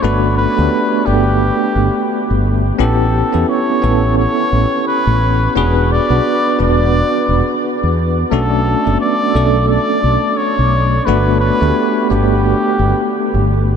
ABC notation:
X:1
M:4/4
L:1/16
Q:"Swing 16ths" 1/4=87
K:Glyd
V:1 name="Muted trumpet"
B2 B4 G8 z2 | A4 c4 c4 B4 | B2 d4 d8 z2 | A4 d4 d4 c4 |
B2 B4 G8 z2 |]
V:2 name="Tine electric piano"
[A,B,DF]3 [A,B,DG]3 [A,B,DG] z8 z | [B,CEG]3 [B,CEA]3 [B,CEA] z8 z | [B,DF^G]3 [B,DFB]3 [B,DFB] z8 z | [A,CDF]3 [A,B,DA]3 [A,CDA] z8 z |
[A,B,DF]3 [A,B,DG]3 [A,B,DG] z8 z |]
V:3 name="Fretless electric bass" clef=bass
G,,,2 z D,, z2 G,,,2 z2 G,,, z2 G,,,2 z | A,,,2 z E,, z2 A,,,2 z2 A,,, z2 A,,,2 z | E,,,2 z B,,, z2 E,,,2 z2 E,,, z2 E,,2 z | B,,,2 z F,,, z2 B,,,2 z2 B,,, z2 B,,,2 z |
G,,,2 z D,, z2 G,,,2 z2 G,,, z2 G,,,2 z |]